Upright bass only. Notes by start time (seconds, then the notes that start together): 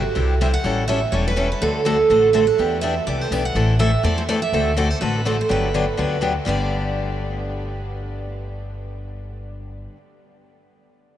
0.16 C2
0.64 A1
1.12 E1
1.61 D2
2.10 A1
2.59 E2
3.07 C2
3.31 B1
3.55 A1
4.04 E2
4.52 D2
5.02 A1
5.50 G1
5.98 D2
6.46 G1